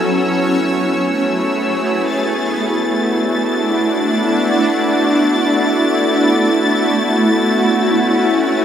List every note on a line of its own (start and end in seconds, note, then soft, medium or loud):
0.00 8.65 A3 medium
0.00 2.03 B3 medium
0.00 2.07 C#4 medium
0.00 8.65 E4 medium
0.00 2.03 F#4 medium
0.00 2.07 C#5 medium
0.00 2.08 E6 medium
0.80 2.99 G#4 medium
2.04 8.65 B3 medium
2.04 8.65 F#4 medium
2.04 8.65 A6 medium
2.52 6.69 D4 medium
3.12 8.65 F#4 medium
3.89 6.68 D5 medium
7.04 8.65 C#4 medium
8.11 8.65 C#5 medium